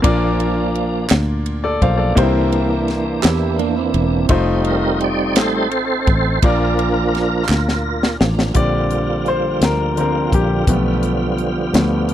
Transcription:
0.02 1.06 A#1 medium
0.02 1.06 A#2 medium
0.02 1.06 F3 medium
0.02 2.12 A#3 medium
0.02 1.07 A#3 soft
0.02 2.12 D4 medium
0.02 1.07 D4 medium
0.02 2.13 F4 medium
0.02 1.08 D5 medium
0.02 kick medium
0.02 ride bell medium
0.40 ride bell soft
0.75 ride bell soft
1.10 1.77 D2 medium
1.10 snare medium
1.10 clap medium
1.10 ride bell medium
1.46 ride bell soft
1.64 1.81 A4 medium
1.64 1.80 D5 medium
1.82 2.14 B1 medium
1.82 2.14 F3 soft
1.82 2.14 A#3 soft
1.82 2.14 D4 soft
1.82 1.98 C5 medium
1.82 1.99 F5 medium
1.82 kick medium
1.82 ride bell soft
1.97 2.32 A4 medium
1.97 2.32 D5 medium
2.15 3.19 C2 medium
2.15 3.19 C3 medium
2.15 4.26 E3 medium
2.15 4.25 A#3 medium
2.15 4.26 A#3 soft
2.15 2.22 D#4 medium
2.15 4.26 G4 medium
2.15 4.26 C5 medium
2.15 kick loud
2.15 ride bell medium
2.19 4.27 D4 medium
2.19 4.28 E4 medium
2.52 ride bell soft
2.88 snare soft
2.88 ride bell soft
3.23 3.91 E2 medium
3.23 3.56 E4 medium
3.23 3.57 G4 medium
3.23 snare loud
3.23 clap medium
3.23 ride bell medium
3.59 3.76 A#3 medium
3.59 3.76 D4 medium
3.59 ride bell soft
3.76 4.28 C4 medium
3.76 4.27 E4 medium
3.94 4.27 E1 medium
3.94 ride bell soft
4.29 5.36 F1 medium
4.29 5.35 G3 medium
4.29 6.38 A3 medium
4.29 6.39 C4 soft
4.29 6.38 D#4 medium
4.29 5.36 D#4 medium
4.29 6.39 F4 medium
4.29 6.39 C5 medium
4.29 kick loud
4.29 ride bell medium
4.65 4.99 A#4 medium
4.65 ride bell soft
5.01 5.39 D5 loud
5.01 ride bell soft
5.36 6.03 A1 medium
5.36 5.68 G3 soft
5.36 5.68 A3 soft
5.36 5.69 D#4 medium
5.36 6.39 A4 medium
5.36 6.47 C5 loud
5.36 snare loud
5.36 clap medium
5.36 ride bell medium
5.71 ride bell soft
6.07 6.40 A1 medium
6.07 kick medium
6.07 ride bell soft
6.42 7.45 A#1 loud
6.42 7.46 A#2 medium
6.42 7.45 F3 medium
6.42 8.51 A#3 medium
6.42 7.45 A#3 soft
6.42 7.46 D4 medium
6.42 8.52 D4 medium
6.42 8.16 F4 medium
6.42 8.52 F4 medium
6.42 8.18 A#4 medium
6.42 8.53 D5 medium
6.42 kick loud
6.42 ride bell medium
6.79 ride bell soft
7.15 snare soft
7.15 ride bell soft
7.49 8.16 D2 medium
7.49 snare medium
7.49 clap loud
7.69 snare medium
8.03 snare medium
8.20 8.53 A1 medium
8.20 8.52 F3 soft
8.20 8.52 A#3 soft
8.20 8.53 D4 soft
8.20 snare loud
8.39 snare medium
8.53 9.58 A#1 medium
8.53 9.57 D3 soft
8.53 12.14 D3 medium
8.53 12.14 F3 soft
8.53 12.14 G3 medium
8.53 9.57 G3 soft
8.53 10.66 A#3 soft
8.53 9.58 C4 soft
8.53 10.66 F4 medium
8.53 9.29 D5 medium
8.53 kick medium
8.53 closed hi-hat medium
8.91 closed hi-hat soft
9.26 9.60 C5 medium
9.26 closed hi-hat soft
9.61 10.29 D2 medium
9.61 9.99 A#4 medium
9.61 snare loud
9.61 closed hi-hat medium
9.96 10.29 D3 soft
9.96 10.29 G3 soft
9.96 10.30 C4 medium
9.96 closed hi-hat soft
10.01 10.08 A#4 medium
10.32 10.66 A#1 medium
10.32 11.01 G4 medium
10.32 kick medium
10.32 closed hi-hat soft
10.67 11.70 B1 medium
10.67 11.15 F3 soft
10.67 11.16 A3 soft
10.67 12.14 B3 soft
10.67 11.16 B3 medium
10.67 12.14 F4 medium
10.67 kick loud
10.67 closed hi-hat loud
11.03 closed hi-hat soft
11.38 closed hi-hat soft
11.73 12.14 D2 medium
11.73 12.06 F3 soft
11.73 12.07 A3 soft
11.73 12.07 B3 soft
11.73 snare loud
11.73 closed hi-hat medium
12.09 closed hi-hat soft

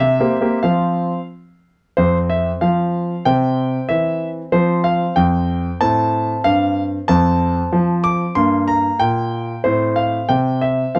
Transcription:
0.00 0.18 C3 medium
0.00 0.63 E5 medium
0.20 0.35 A#3 soft
0.20 0.36 C4 soft
0.20 0.36 G4 soft
0.41 0.57 A#3 soft
0.41 0.57 C4 soft
0.41 0.58 G4 soft
0.63 1.11 F3 soft
0.63 1.18 C4 soft
0.63 1.18 F4 soft
0.63 1.24 F5 medium
1.97 2.50 F2 medium
1.97 3.22 C4 soft
1.97 2.17 C5 medium
2.30 2.49 E5 medium
2.61 3.13 F3 soft
2.61 3.26 F5 medium
3.25 3.77 C3 medium
3.25 4.49 C4 soft
3.25 3.86 G5 medium
3.89 4.41 E3 soft
3.89 4.27 E5 medium
4.52 5.04 F3 medium
4.52 5.77 C4 soft
4.52 4.85 C5 medium
4.84 5.17 F5 medium
5.16 5.68 F2 medium
5.16 5.76 G5 medium
5.81 6.32 A2 medium
5.81 7.05 C4 soft
5.81 6.41 A5 medium
6.44 6.96 G2 medium
6.44 6.83 F5 medium
7.08 7.60 F2 medium
7.08 8.33 C4 soft
7.08 8.04 A5 medium
7.72 8.24 F3 medium
8.04 8.33 D6 medium
8.35 8.87 G2 medium
8.35 9.60 A#3 soft
8.35 8.64 C6 medium
8.68 9.00 A#5 medium
9.00 9.52 A#2 medium
9.00 9.60 G5 medium
9.64 10.17 A2 medium
9.64 10.26 C4 soft
9.64 9.96 C5 medium
9.96 10.29 F5 medium
10.29 10.83 C3 soft
10.29 10.92 C4 soft
10.29 10.62 G5 medium
10.61 10.92 E5 medium
10.95 10.99 F3 soft
10.95 10.99 C4 soft
10.95 10.99 F5 medium

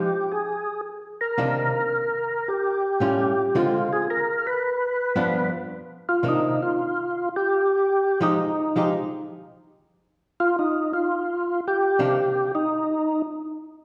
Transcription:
0.00 0.32 G4 medium
0.32 0.81 G#4 medium
1.21 2.50 A#4 medium
1.38 1.70 C3 medium
1.38 1.71 D#3 medium
1.38 1.71 A#3 medium
1.38 1.71 D4 medium
2.48 3.58 G4 medium
3.00 3.33 A2 medium
3.00 3.33 G3 medium
3.00 3.33 C#4 medium
3.00 3.33 F4 medium
3.55 3.87 D3 medium
3.55 3.87 G#3 medium
3.55 3.87 C4 medium
3.55 3.88 F4 medium
3.55 3.92 F4 medium
3.93 4.08 G#4 medium
4.10 4.46 A#4 medium
4.47 5.49 B4 medium
5.16 5.48 G2 medium
5.16 5.48 F3 medium
5.16 5.48 B3 medium
5.16 5.49 D4 medium
6.09 6.25 F4 medium
6.23 6.56 C3 medium
6.23 6.56 D#3 soft
6.23 6.56 A#3 medium
6.23 6.57 D4 medium
6.28 6.61 D#4 medium
6.62 7.29 F4 medium
7.36 8.20 G4 loud
8.21 8.37 F3 medium
8.21 8.38 G#3 medium
8.21 8.38 D#4 medium
8.21 8.90 D#4 medium
8.21 8.38 G4 medium
8.76 8.92 F3 medium
8.76 8.92 G#3 medium
8.76 8.93 D#4 medium
8.76 8.93 G4 medium
10.40 10.56 F4 loud
10.59 10.92 D#4 medium
10.93 11.60 F4 medium
11.68 12.52 G4 medium
11.99 12.15 C3 medium
11.99 12.16 D#3 medium
11.99 12.16 A#3 medium
11.99 12.16 D4 medium
12.55 13.22 D#4 medium

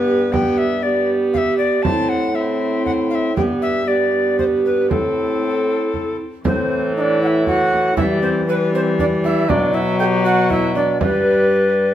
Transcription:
0.00 1.57 G2 medium
0.00 0.33 B3 medium
0.00 0.32 G4 medium
0.00 0.34 B4 medium
0.32 0.83 B3 medium
0.32 0.65 G4 medium
0.32 0.59 G5 medium
0.32 frame drum medium
0.58 0.84 E5 medium
0.83 1.83 B3 medium
0.83 1.87 G4 medium
0.83 1.11 D5 medium
1.33 1.39 F5 medium
1.33 frame drum soft
1.38 1.57 E5 medium
1.58 1.84 D5 medium
1.83 3.33 A2 medium
1.83 2.34 C4 medium
1.83 1.90 F#4 medium
1.83 2.10 A5 medium
1.83 frame drum medium
1.89 2.34 E4 medium
2.09 2.37 F#5 medium
2.35 3.35 C4 medium
2.35 3.35 E4 medium
2.35 2.85 E5 medium
2.86 2.92 F#5 medium
2.86 frame drum soft
3.10 3.16 F5 medium
3.15 3.35 E5 medium
3.36 4.92 G2 medium
3.36 3.85 B3 medium
3.36 3.84 G4 medium
3.36 3.42 G5 medium
3.36 frame drum medium
3.62 3.89 E5 medium
3.87 4.92 B3 medium
3.87 4.93 G4 medium
3.87 4.38 D5 medium
4.39 4.45 C5 medium
4.39 frame drum soft
4.65 4.89 B4 medium
4.90 6.19 A2 medium
4.90 6.25 C4 medium
4.90 6.20 E4 medium
4.90 6.17 A4 medium
4.90 frame drum medium
5.94 frame drum soft
6.44 7.93 A2 medium
6.44 7.93 E3 medium
6.44 6.92 C4 medium
6.44 6.93 C5 medium
6.44 frame drum medium
6.96 7.02 D#4 medium
6.96 7.02 D#5 medium
7.01 7.20 D4 medium
7.01 7.21 D5 medium
7.21 7.45 E4 medium
7.21 7.28 F#5 medium
7.27 7.47 E5 loud
7.46 7.96 F#4 loud
7.46 7.96 F#5 loud
7.46 frame drum soft
7.73 frame drum soft
7.97 9.46 E3 medium
7.97 8.47 G3 medium
7.97 8.03 E4 medium
7.97 8.22 E5 medium
7.97 frame drum medium
8.22 8.47 C4 medium
8.22 8.29 C5 loud
8.47 9.47 G3 medium
8.47 8.72 B4 medium
8.47 8.55 B4 loud
8.73 8.98 C4 medium
8.73 8.81 C5 loud
8.98 9.04 D4 loud
8.98 9.06 D5 loud
8.98 frame drum medium
9.24 9.50 E4 medium
9.24 9.51 E5 loud
9.24 frame drum medium
9.49 10.97 B2 medium
9.49 10.97 F#3 medium
9.49 9.72 D4 medium
9.49 9.76 D5 loud
9.49 frame drum medium
9.73 9.79 E4 medium
9.73 9.99 E5 loud
9.99 10.05 A4 medium
9.99 10.05 G5 loud
10.04 10.26 G4 medium
10.25 10.52 F#4 medium
10.25 10.50 F#5 loud
10.50 10.75 E4 loud
10.50 10.75 E5 medium
10.50 frame drum soft
10.75 11.02 D4 medium
10.75 11.01 D5 medium
10.75 frame drum medium
11.01 11.94 G2 medium
11.01 11.94 G3 medium
11.01 11.94 B4 medium
11.01 frame drum medium

